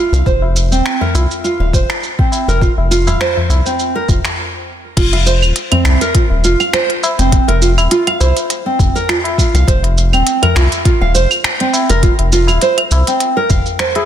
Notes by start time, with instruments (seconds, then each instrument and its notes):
Already playing: nylon-string guitar F4
0.12 analog synth bass C2, nylon-string guitar F5, shaker
0.26 analog synth bass F1, nylon-string guitar C5, kick, shaker
0.42 tabla tin
0.56 tabla tin, shaker
0.71 analog synth bass D#1, nylon-string guitar C4, shaker
0.86 finger snap, shaker
1.01 nylon-string guitar A#4, tabla tin, tabla ge
1.15 analog synth bass C2, nylon-string guitar F4, tabla na, shaker
1.31 shaker
1.44 nylon-string guitar F4, shaker
1.60 analog synth bass D#1, nylon-string guitar F5, tabla tin
1.73 analog synth bass F1, nylon-string guitar C5, kick, shaker
1.90 finger snap, shaker
2.03 shaker
2.19 nylon-string guitar C4, kick
2.32 tabla na, shaker
2.48 analog synth bass F1, nylon-string guitar A#4, shaker
2.61 nylon-string guitar F4, kick, shaker
2.77 analog synth bass F1, tabla tin
2.91 nylon-string guitar F4, shaker
3.07 analog synth bass D#1, nylon-string guitar F5, tabla na, tabla ge, shaker
3.21 nylon-string guitar C5, finger snap, shaker
3.37 tabla tin, tabla ge
3.50 analog synth bass C2, tabla na, shaker
3.66 nylon-string guitar C4, shaker
3.79 shaker
3.95 nylon-string guitar A#4
4.09 analog synth bass F1, nylon-string guitar F4, kick, tabla tin, tabla ge, shaker
4.25 finger snap, shaker
4.97 analog synth bass F1, nylon-string guitar F4, kick, closed hi-hat, crash, shaker
5.13 nylon-string guitar F5, closed hi-hat, tabla tin
5.26 nylon-string guitar C5, tabla tin, shaker
5.42 analog synth bass D#1, claves, shaker
5.56 closed hi-hat, shaker
5.71 nylon-string guitar C4, closed hi-hat, tabla tin, tabla ge, claves
5.85 analog synth bass C2, finger snap, tabla na, shaker
6.01 nylon-string guitar A#4, closed hi-hat, shaker
6.15 nylon-string guitar F4, kick, closed hi-hat, shaker
6.30 analog synth bass D#1, tabla tin
6.44 analog synth bass F1, nylon-string guitar F4, shaker
6.60 nylon-string guitar F5, claves, shaker
6.73 nylon-string guitar C5, finger snap, closed hi-hat, shaker
6.90 closed hi-hat
7.03 tabla na, shaker
7.19 analog synth bass F1, nylon-string guitar C4, closed hi-hat, shaker
7.32 kick, closed hi-hat, shaker
7.48 analog synth bass F1, nylon-string guitar A#4, closed hi-hat, tabla tin
7.62 nylon-string guitar F4, tabla tin, shaker
7.78 analog synth bass D#1, tabla na, claves, shaker
7.91 nylon-string guitar F4, closed hi-hat, shaker
8.07 nylon-string guitar F5, closed hi-hat, tabla tin, claves
8.20 analog synth bass C2, nylon-string guitar C5, tabla na, shaker
8.37 closed hi-hat, shaker
8.50 closed hi-hat, shaker
8.66 nylon-string guitar C4
8.79 analog synth bass F1, kick, tabla tin, tabla ge, shaker
8.95 nylon-string guitar A#4, shaker
9.09 nylon-string guitar F4, finger snap, closed hi-hat, shaker
9.24 closed hi-hat, tabla na
9.38 nylon-string guitar F4, kick, shaker
9.54 analog synth bass C2, nylon-string guitar F5, closed hi-hat, shaker
9.68 analog synth bass F1, nylon-string guitar C5, kick, closed hi-hat, shaker
9.83 closed hi-hat, tabla tin
9.97 tabla tin, shaker
10.13 analog synth bass D#1, nylon-string guitar C4, claves, shaker
10.27 closed hi-hat, shaker
10.42 nylon-string guitar A#4, closed hi-hat, tabla tin, tabla ge, claves
10.56 analog synth bass C2, nylon-string guitar F4, finger snap, tabla na, shaker
10.72 closed hi-hat, shaker
10.85 nylon-string guitar F4, kick, closed hi-hat, shaker
11.01 analog synth bass D#1, nylon-string guitar F5, tabla tin
11.15 analog synth bass F1, nylon-string guitar C5, shaker
11.31 claves, shaker
11.44 finger snap, closed hi-hat, shaker
11.60 nylon-string guitar C4, closed hi-hat
11.73 tabla na, shaker
11.90 analog synth bass F1, nylon-string guitar A#4, closed hi-hat, shaker
12.03 nylon-string guitar F4, kick, closed hi-hat, shaker
12.19 analog synth bass F1, closed hi-hat, tabla tin
12.32 nylon-string guitar F4, tabla tin, shaker
12.47 analog synth bass D#1, nylon-string guitar F5, tabla na, claves, shaker
12.62 nylon-string guitar C5, closed hi-hat, shaker
12.78 closed hi-hat, tabla tin, claves
12.91 analog synth bass C2, tabla na, shaker
13.07 nylon-string guitar C4, closed hi-hat, shaker
13.20 closed hi-hat, shaker
13.37 nylon-string guitar A#4
13.50 analog synth bass F1, nylon-string guitar F5, kick, tabla tin, tabla ge, shaker
13.66 shaker
13.79 nylon-string guitar C5, finger snap, closed hi-hat, shaker
13.95 nylon-string guitar G#4, closed hi-hat, tabla na